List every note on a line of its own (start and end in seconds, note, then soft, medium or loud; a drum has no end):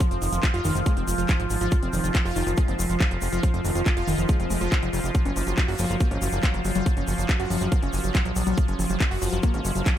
0.00 9.98 F3 medium
0.00 9.98 F4 medium
0.00 kick loud
0.00 closed hi-hat medium
0.11 0.18 F1 medium
0.11 0.14 C4 medium
0.11 closed hi-hat medium
0.22 0.29 F1 loud
0.22 0.27 D#3 medium
0.22 open hi-hat loud
0.22 shaker loud
0.32 0.39 F1 medium
0.32 0.38 F3 medium
0.32 closed hi-hat medium
0.32 shaker medium
0.43 0.46 F3 medium
0.43 kick loud
0.43 clap loud
0.43 closed hi-hat loud
0.43 shaker soft
0.54 0.61 F1 medium
0.54 0.59 F4 loud
0.54 closed hi-hat medium
0.65 0.72 F1 loud
0.65 0.70 D#3 loud
0.65 open hi-hat loud
0.65 shaker medium
0.75 0.82 F1 medium
0.75 0.78 F3 medium
0.75 closed hi-hat medium
0.75 shaker medium
0.86 0.91 G#3 medium
0.86 kick loud
0.86 closed hi-hat medium
0.86 shaker soft
0.97 1.04 F1 medium
0.97 1.00 C4 medium
0.97 closed hi-hat medium
1.08 1.14 F1 loud
1.08 1.13 F3 medium
1.08 open hi-hat loud
1.08 shaker loud
1.18 1.25 F1 medium
1.18 1.23 F3 medium
1.18 closed hi-hat medium
1.18 shaker soft
1.28 1.32 F3 medium
1.28 kick loud
1.28 clap loud
1.28 closed hi-hat medium
1.28 shaker soft
1.40 1.47 G#1 medium
1.40 1.45 F3 medium
1.40 closed hi-hat medium
1.50 1.57 G#1 loud
1.50 1.58 F3 medium
1.50 open hi-hat loud
1.50 shaker medium
1.61 1.68 G#1 medium
1.61 1.64 F3 loud
1.61 closed hi-hat medium
1.61 shaker medium
1.71 1.77 F3 medium
1.71 kick loud
1.71 closed hi-hat medium
1.71 shaker soft
1.83 1.89 F1 medium
1.83 1.86 C4 medium
1.83 closed hi-hat medium
1.93 2.00 F1 loud
1.93 1.98 D#3 medium
1.93 open hi-hat loud
1.93 shaker loud
2.04 2.11 F1 medium
2.04 2.09 F3 medium
2.04 closed hi-hat medium
2.04 shaker medium
2.14 2.18 F3 medium
2.14 kick loud
2.14 clap loud
2.14 closed hi-hat medium
2.14 shaker soft
2.25 2.32 F1 medium
2.25 2.31 F4 loud
2.25 open hi-hat medium
2.36 2.43 F1 loud
2.36 2.41 D#3 loud
2.36 open hi-hat loud
2.36 shaker loud
2.47 2.54 F1 medium
2.47 2.50 F3 medium
2.47 closed hi-hat medium
2.47 shaker medium
2.57 2.63 G#3 medium
2.57 kick loud
2.57 closed hi-hat medium
2.57 shaker soft
2.68 2.75 F#1 medium
2.68 2.71 C4 medium
2.68 closed hi-hat medium
2.79 2.86 F1 loud
2.79 2.84 F3 medium
2.79 open hi-hat loud
2.79 shaker loud
2.90 2.97 F1 medium
2.90 2.95 F3 medium
2.90 closed hi-hat medium
2.90 shaker medium
3.00 3.04 F3 medium
3.00 kick loud
3.00 clap loud
3.00 closed hi-hat medium
3.00 shaker soft
3.11 3.18 F1 medium
3.11 3.16 F3 medium
3.11 closed hi-hat medium
3.21 3.29 F1 loud
3.21 3.30 F3 medium
3.21 open hi-hat loud
3.21 shaker loud
3.33 3.39 F1 medium
3.33 3.36 F3 loud
3.33 closed hi-hat medium
3.33 shaker medium
3.43 3.48 F3 medium
3.43 kick loud
3.43 closed hi-hat medium
3.43 shaker soft
3.54 3.61 F1 medium
3.54 3.57 C4 medium
3.54 closed hi-hat soft
3.65 3.72 F1 loud
3.65 3.70 D#3 medium
3.65 open hi-hat loud
3.65 shaker loud
3.75 3.82 F1 loud
3.75 3.81 F3 medium
3.75 closed hi-hat medium
3.75 shaker medium
3.86 3.89 F3 medium
3.86 kick loud
3.86 clap loud
3.86 closed hi-hat medium
3.86 shaker soft
3.97 4.04 F1 medium
3.97 4.02 F4 loud
3.97 closed hi-hat medium
4.08 4.14 F1 loud
4.08 4.13 D#3 loud
4.08 open hi-hat loud
4.08 shaker medium
4.18 4.25 F1 medium
4.18 4.21 F3 medium
4.18 closed hi-hat medium
4.18 shaker soft
4.29 4.34 G#3 medium
4.29 kick loud
4.29 closed hi-hat medium
4.29 shaker soft
4.40 4.47 F1 medium
4.40 4.43 C4 medium
4.40 closed hi-hat medium
4.50 4.57 F1 loud
4.50 4.58 G#3 medium
4.50 open hi-hat loud
4.50 shaker medium
4.61 4.68 F1 medium
4.61 4.66 F3 loud
4.61 closed hi-hat medium
4.61 shaker soft
4.72 kick loud
4.72 clap loud
4.72 closed hi-hat medium
4.72 shaker soft
4.83 4.89 F1 medium
4.83 4.86 G#3 medium
4.83 closed hi-hat soft
4.93 5.00 F1 loud
4.93 4.96 F3 medium
4.93 open hi-hat loud
4.93 shaker medium
5.04 5.11 F1 medium
5.04 5.07 F3 medium
5.04 closed hi-hat medium
5.04 shaker medium
5.15 5.20 F#3 medium
5.15 kick loud
5.15 closed hi-hat medium
5.15 shaker soft
5.25 5.32 F#1 medium
5.25 5.29 C#4 medium
5.25 closed hi-hat medium
5.36 5.43 F#1 loud
5.36 5.41 F3 medium
5.36 open hi-hat loud
5.36 shaker medium
5.47 5.54 F#1 medium
5.47 5.52 F#3 medium
5.47 closed hi-hat soft
5.47 shaker medium
5.58 5.61 F#3 medium
5.58 kick loud
5.58 clap loud
5.58 closed hi-hat medium
5.58 shaker soft
5.68 5.75 F#1 medium
5.68 5.73 F#4 loud
5.68 open hi-hat medium
5.78 5.86 F#1 loud
5.78 5.84 F3 loud
5.78 open hi-hat loud
5.78 shaker loud
5.90 5.97 F#1 medium
5.90 5.93 F#3 medium
5.90 closed hi-hat soft
5.90 shaker medium
6.00 6.06 A#3 medium
6.00 kick loud
6.00 closed hi-hat medium
6.00 shaker soft
6.11 6.18 G#1 medium
6.11 6.14 C#4 medium
6.11 closed hi-hat medium
6.22 6.29 F#1 loud
6.22 6.27 F#3 medium
6.22 open hi-hat loud
6.22 shaker medium
6.32 6.39 F#1 medium
6.32 6.38 F#3 medium
6.32 closed hi-hat medium
6.32 shaker medium
6.42 6.46 F#3 medium
6.42 kick loud
6.42 clap loud
6.42 closed hi-hat medium
6.42 shaker soft
6.54 6.61 F#1 medium
6.54 6.59 F#3 medium
6.54 closed hi-hat medium
6.65 6.72 F#1 loud
6.65 6.72 F#3 medium
6.65 open hi-hat loud
6.65 shaker medium
6.75 6.82 F#1 medium
6.75 6.78 F#3 loud
6.75 closed hi-hat medium
6.75 shaker medium
6.86 6.91 F#3 medium
6.86 kick loud
6.86 closed hi-hat medium
6.86 shaker soft
6.97 7.04 F#1 medium
6.97 7.00 C#4 medium
6.97 closed hi-hat medium
7.08 7.14 F#1 loud
7.08 7.13 F3 medium
7.08 open hi-hat loud
7.08 shaker medium
7.18 7.25 F#1 medium
7.18 7.23 F#3 medium
7.18 closed hi-hat medium
7.18 shaker medium
7.29 7.32 F#3 medium
7.29 kick loud
7.29 clap loud
7.29 closed hi-hat medium
7.29 shaker soft
7.40 7.47 F#1 medium
7.40 7.45 F#4 loud
7.40 closed hi-hat medium
7.50 7.57 F#1 loud
7.50 7.56 F3 loud
7.50 open hi-hat loud
7.50 shaker loud
7.61 7.68 F#1 medium
7.61 7.64 F#3 medium
7.61 closed hi-hat medium
7.61 shaker medium
7.72 7.77 A#3 medium
7.72 kick loud
7.72 closed hi-hat medium
7.72 shaker soft
7.83 7.89 F#1 medium
7.83 7.86 C#4 medium
7.83 closed hi-hat medium
7.93 8.00 F#1 loud
7.93 7.98 F#3 medium
7.93 open hi-hat loud
7.93 shaker medium
8.04 8.11 F#1 medium
8.04 8.09 F#3 medium
8.04 closed hi-hat medium
8.04 shaker soft
8.15 8.18 F#3 medium
8.15 kick loud
8.15 clap loud
8.15 closed hi-hat medium
8.15 shaker soft
8.25 8.32 A#1 medium
8.25 8.31 F#3 medium
8.25 closed hi-hat medium
8.36 8.43 A#1 loud
8.36 8.44 F#3 medium
8.36 open hi-hat loud
8.36 shaker medium
8.46 8.54 A#1 medium
8.46 8.50 F#3 loud
8.46 closed hi-hat medium
8.46 shaker medium
8.57 8.63 F#3 medium
8.57 kick loud
8.57 closed hi-hat loud
8.57 shaker soft
8.68 8.75 F#1 medium
8.68 8.71 C#4 medium
8.68 closed hi-hat medium
8.79 8.86 F#1 loud
8.79 8.84 F3 medium
8.79 open hi-hat loud
8.79 shaker medium
8.89 8.97 F#1 loud
8.89 8.95 F#3 medium
8.89 closed hi-hat medium
8.89 shaker medium
9.00 9.03 F#3 medium
9.00 kick loud
9.00 clap loud
9.00 closed hi-hat loud
9.00 shaker soft
9.11 9.18 F#1 medium
9.11 9.16 F#4 loud
9.11 open hi-hat medium
9.22 9.29 F#1 loud
9.22 9.27 F3 loud
9.22 open hi-hat loud
9.22 shaker loud
9.32 9.39 F#1 medium
9.32 9.36 F#3 medium
9.32 closed hi-hat medium
9.32 shaker soft
9.43 9.48 A#3 medium
9.43 kick loud
9.43 closed hi-hat loud
9.43 shaker soft
9.54 9.61 G#1 medium
9.54 9.57 C#4 medium
9.54 closed hi-hat medium
9.65 9.72 F#1 loud
9.65 9.70 F#3 medium
9.65 open hi-hat loud
9.65 shaker medium
9.75 9.82 F#1 medium
9.75 9.81 F#3 medium
9.75 closed hi-hat medium
9.75 shaker soft
9.86 9.89 F#3 medium
9.86 kick loud
9.86 clap loud
9.86 closed hi-hat loud
9.86 shaker soft